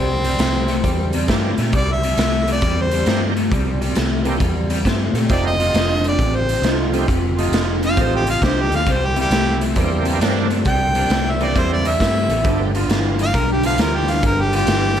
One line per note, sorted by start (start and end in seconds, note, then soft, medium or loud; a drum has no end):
0.00 0.37 C2 medium
0.00 0.22 C3 medium
0.00 0.22 G3 medium
0.00 1.26 C4 loud
0.24 0.38 C3 medium
0.24 0.38 G3 medium
0.24 closed hi-hat medium
0.39 0.82 C2 medium
0.39 0.66 C3 medium
0.39 0.66 A3 medium
0.39 snare loud
0.39 closed hi-hat medium
0.68 0.83 C3 medium
0.68 0.83 A3 medium
0.68 closed hi-hat medium
0.84 1.26 E2 medium
0.84 1.11 C3 medium
0.84 1.11 G3 medium
0.84 kick loud
0.84 closed hi-hat medium
1.13 1.27 C3 medium
1.13 1.28 G3 medium
1.13 closed hi-hat medium
1.28 1.56 G2 medium
1.28 1.55 C3 medium
1.28 1.55 E3 medium
1.28 1.55 A3 medium
1.28 1.55 A#3 medium
1.28 1.55 C4 medium
1.28 1.55 D4 medium
1.28 1.55 G4 medium
1.28 kick medium
1.28 snare loud
1.28 closed hi-hat medium
1.58 1.72 A#2 medium
1.58 1.72 C3 medium
1.58 1.72 A3 medium
1.58 snare soft
1.58 closed hi-hat medium
1.73 2.15 C2 medium
1.73 2.00 C3 medium
1.73 2.00 G3 loud
1.73 1.94 D5 loud
1.73 kick loud
1.73 closed hi-hat medium
1.92 2.48 E5 loud
2.03 2.17 C3 medium
2.03 2.17 G3 medium
2.03 closed hi-hat medium
2.17 2.60 C2 medium
2.17 2.45 C3 medium
2.17 2.45 A3 loud
2.17 snare loud
2.17 closed hi-hat medium
2.48 2.61 C3 medium
2.48 2.61 A3 medium
2.48 closed hi-hat medium
2.52 2.83 D5 loud
2.62 3.05 E2 medium
2.62 2.89 C3 medium
2.62 2.89 G3 medium
2.62 kick loud
2.62 closed hi-hat medium
2.81 3.23 C5 loud
2.91 3.06 C3 medium
2.91 3.06 G3 medium
2.91 closed hi-hat medium
3.06 3.49 G2 medium
3.06 3.33 C3 medium
3.06 3.33 E3 medium
3.06 3.34 A3 medium
3.06 3.34 A#3 medium
3.06 3.34 C4 medium
3.06 3.34 D4 medium
3.06 3.34 G4 medium
3.06 snare loud
3.06 closed hi-hat medium
3.36 3.50 C3 medium
3.36 3.50 A3 medium
3.36 closed hi-hat medium
3.52 3.94 C2 medium
3.52 3.78 C3 medium
3.52 3.79 G3 medium
3.52 kick loud
3.52 closed hi-hat medium
3.81 3.95 C3 medium
3.81 3.95 G3 medium
3.81 closed hi-hat medium
3.95 4.39 C2 medium
3.95 4.23 C3 medium
3.95 4.23 A3 medium
3.95 snare loud
3.95 closed hi-hat medium
4.25 4.39 C3 medium
4.25 4.39 E3 medium
4.25 4.39 A3 medium
4.25 4.39 A#3 medium
4.25 4.39 C4 medium
4.25 4.39 D4 medium
4.25 4.39 G4 medium
4.25 closed hi-hat medium
4.40 4.83 E2 medium
4.40 4.67 C3 medium
4.40 4.67 G3 medium
4.40 kick loud
4.40 closed hi-hat medium
4.70 4.84 C3 medium
4.70 4.84 G3 medium
4.70 closed hi-hat medium
4.85 5.13 G2 medium
4.85 5.12 C3 medium
4.85 5.12 A3 medium
4.85 kick medium
4.85 snare loud
4.85 closed hi-hat medium
5.13 5.28 A#2 medium
5.13 5.28 C3 medium
5.13 5.29 A3 medium
5.13 snare soft
5.13 closed hi-hat medium
5.29 5.72 F1 medium
5.29 5.57 F2 medium
5.29 5.57 C3 medium
5.29 5.56 F3 medium
5.29 5.56 A3 medium
5.29 5.56 C4 medium
5.29 5.57 D#4 medium
5.29 5.57 G4 medium
5.29 5.45 D5 medium
5.29 kick loud
5.29 closed hi-hat medium
5.47 6.04 D#5 loud
5.59 5.73 F2 medium
5.59 5.73 C3 medium
5.59 6.10 A3 medium
5.59 6.10 D#4 medium
5.59 6.10 F4 medium
5.59 closed hi-hat medium
5.74 6.17 F1 medium
5.74 6.01 F2 medium
5.74 6.01 D3 medium
5.74 snare loud
5.74 closed hi-hat medium
6.04 6.18 F2 medium
6.04 6.18 D3 medium
6.04 closed hi-hat medium
6.08 6.37 D5 medium
6.19 6.61 A1 medium
6.19 6.46 F2 medium
6.19 6.46 C3 medium
6.19 kick loud
6.19 closed hi-hat medium
6.36 6.78 C5 loud
6.49 6.63 F2 medium
6.49 6.63 C3 medium
6.49 closed hi-hat medium
6.62 7.05 C2 medium
6.62 6.91 F2 medium
6.62 6.91 D3 medium
6.62 7.05 A3 medium
6.62 7.05 D#4 medium
6.62 7.05 F4 medium
6.62 snare loud
6.62 closed hi-hat medium
6.93 7.07 F2 medium
6.93 7.08 D3 medium
6.93 7.07 F3 medium
6.93 7.07 A3 medium
6.93 7.07 C4 medium
6.93 7.07 D#4 medium
6.93 7.07 G4 medium
6.93 closed hi-hat medium
7.08 7.51 F1 medium
7.08 7.35 F2 medium
7.08 7.36 C3 medium
7.08 kick loud
7.08 closed hi-hat medium
7.37 7.52 F2 medium
7.37 7.52 C3 medium
7.37 7.77 A3 medium
7.37 7.76 D#4 medium
7.37 7.76 F4 medium
7.37 closed hi-hat medium
7.52 7.95 F1 medium
7.52 7.80 F2 medium
7.52 7.80 D3 medium
7.52 snare loud
7.52 closed hi-hat medium
7.83 7.97 F2 medium
7.83 7.97 D3 medium
7.83 8.03 F5 loud
7.83 closed hi-hat medium
7.97 8.40 A1 medium
7.97 8.24 F2 medium
7.97 8.25 C3 medium
7.97 8.24 F3 medium
7.97 8.30 A3 medium
7.97 8.24 A3 medium
7.97 8.24 C4 medium
7.97 8.30 D#4 medium
7.97 8.24 D#4 medium
7.97 8.30 F4 medium
7.97 8.25 G4 medium
7.97 kick loud
7.97 closed hi-hat medium
8.02 8.14 C5 medium
8.16 8.29 G4 medium
8.27 8.41 F2 medium
8.27 8.41 C3 medium
8.27 8.45 F5 loud
8.27 closed hi-hat medium
8.41 8.70 C2 medium
8.41 8.69 F2 medium
8.41 8.70 D3 medium
8.41 8.84 A3 medium
8.41 8.84 D#4 medium
8.41 8.84 G4 medium
8.41 8.63 C5 medium
8.41 kick medium
8.41 snare loud
8.41 closed hi-hat medium
8.61 8.74 G4 medium
8.70 8.86 D2 medium
8.70 8.86 F2 medium
8.70 8.87 D3 medium
8.70 closed hi-hat medium
8.76 8.93 F5 loud
8.86 9.29 C2 medium
8.86 9.14 C3 medium
8.86 9.14 G3 loud
8.86 kick loud
8.86 closed hi-hat medium
8.91 9.07 C5 medium
9.06 9.18 G4 medium
9.16 9.30 C3 medium
9.16 9.31 G3 medium
9.16 9.67 A#3 medium
9.16 9.67 C4 medium
9.16 9.67 E4 medium
9.16 closed hi-hat medium
9.21 9.62 G4 loud
9.30 9.74 C2 medium
9.30 9.59 C3 medium
9.30 9.59 A3 medium
9.30 snare loud
9.30 closed hi-hat medium
9.61 9.75 C3 medium
9.61 9.76 A3 medium
9.61 closed hi-hat medium
9.76 10.19 E2 medium
9.76 10.03 C3 medium
9.76 10.19 E3 medium
9.76 10.03 G3 medium
9.76 10.20 A#3 medium
9.76 10.20 C4 medium
9.76 10.20 D4 medium
9.76 10.20 G4 medium
9.76 kick loud
9.76 closed hi-hat medium
10.05 10.20 C3 medium
10.05 10.20 G3 medium
10.05 closed hi-hat medium
10.21 10.64 G2 medium
10.21 10.48 C3 medium
10.21 10.48 E3 medium
10.21 10.48 A3 loud
10.21 10.48 A#3 medium
10.21 10.63 A#3 medium
10.21 10.63 C4 medium
10.21 10.48 C4 medium
10.21 10.63 D4 loud
10.21 10.48 D4 medium
10.21 10.48 G4 medium
10.21 snare loud
10.21 closed hi-hat medium
10.50 10.65 C3 medium
10.50 10.65 A3 medium
10.50 closed hi-hat medium
10.65 11.09 C2 medium
10.65 10.93 C3 medium
10.65 10.93 G3 loud
10.65 11.32 G5 loud
10.65 kick loud
10.65 closed hi-hat medium
10.95 11.09 C3 medium
10.95 11.09 G3 medium
10.95 11.35 A#3 medium
10.95 11.35 C4 medium
10.95 11.35 D4 medium
10.95 closed hi-hat medium
11.10 11.53 C2 medium
11.10 11.37 C3 medium
11.10 11.38 A3 medium
11.10 snare loud
11.10 closed hi-hat medium
11.30 11.45 E5 medium
11.40 11.54 C3 medium
11.40 11.97 E3 medium
11.40 11.54 A3 medium
11.40 11.97 A#3 medium
11.40 11.97 C4 medium
11.40 11.97 D4 medium
11.40 11.98 G4 medium
11.40 11.60 D5 medium
11.40 closed hi-hat medium
11.55 11.98 E2 medium
11.55 11.82 C3 medium
11.55 11.82 G3 medium
11.55 11.88 A#3 medium
11.55 11.88 C4 medium
11.55 11.88 E4 medium
11.55 11.72 C5 medium
11.55 kick loud
11.55 closed hi-hat medium
11.73 11.86 D5 medium
11.85 11.99 C3 medium
11.85 11.99 G3 medium
11.85 12.73 E5 loud
11.85 closed hi-hat medium
12.00 12.28 G2 medium
12.00 12.27 C3 medium
12.00 12.27 A3 medium
12.00 12.42 A#3 medium
12.00 12.42 C4 medium
12.00 12.42 E4 medium
12.00 kick medium
12.00 snare loud
12.00 closed hi-hat medium
12.29 12.44 A1 medium
12.29 12.44 C3 medium
12.29 12.44 A3 medium
12.29 closed hi-hat medium
12.44 12.87 G1 medium
12.44 12.72 G2 medium
12.44 12.72 D3 medium
12.44 12.71 F3 medium
12.44 12.71 A3 medium
12.44 12.71 B3 medium
12.44 12.72 D4 medium
12.44 12.72 G4 medium
12.44 kick loud
12.44 closed hi-hat medium
12.75 12.88 G2 medium
12.75 12.89 D3 medium
12.75 13.25 G3 medium
12.75 13.25 B3 medium
12.75 13.26 F4 loud
12.75 closed hi-hat medium
12.89 13.32 G1 medium
12.89 13.16 G2 medium
12.89 13.17 E3 loud
12.89 snare loud
12.89 closed hi-hat medium
13.19 13.33 G2 medium
13.19 13.33 E3 medium
13.19 13.38 F5 loud
13.19 closed hi-hat medium
13.34 13.76 B1 medium
13.34 13.61 G2 medium
13.34 13.62 D3 medium
13.34 13.50 A#4 loud
13.34 kick loud
13.34 closed hi-hat medium
13.52 13.65 G4 medium
13.63 13.78 G2 medium
13.63 13.78 D3 medium
13.63 13.77 F3 medium
13.63 13.77 A3 medium
13.63 13.78 B3 medium
13.63 13.78 D4 medium
13.63 13.78 F4 medium
13.63 13.80 F5 loud
13.63 closed hi-hat medium
13.78 14.21 D2 medium
13.78 14.06 G2 medium
13.78 14.06 E3 medium
13.78 14.20 G3 medium
13.78 14.20 B3 medium
13.78 14.21 F4 medium
13.78 13.98 A#4 medium
13.78 snare loud
13.78 closed hi-hat medium
13.96 14.13 G4 medium
14.08 14.22 G2 medium
14.08 14.22 E3 medium
14.08 14.24 F5 loud
14.08 snare soft
14.08 closed hi-hat medium
14.23 14.66 G1 medium
14.23 14.50 G2 medium
14.23 14.50 D3 medium
14.23 14.43 A#4 medium
14.23 kick loud
14.23 closed hi-hat medium
14.41 14.54 G4 loud
14.52 14.66 G2 medium
14.52 14.66 D3 medium
14.52 14.91 G3 medium
14.52 14.91 B3 medium
14.52 14.92 F4 medium
14.52 15.00 G4 loud
14.52 closed hi-hat medium
14.67 15.00 G1 medium
14.67 14.94 G2 medium
14.67 14.94 E3 medium
14.67 snare loud
14.67 closed hi-hat medium
14.96 15.00 F3 medium
14.96 15.00 A3 medium
14.96 15.00 B3 medium
14.96 closed hi-hat medium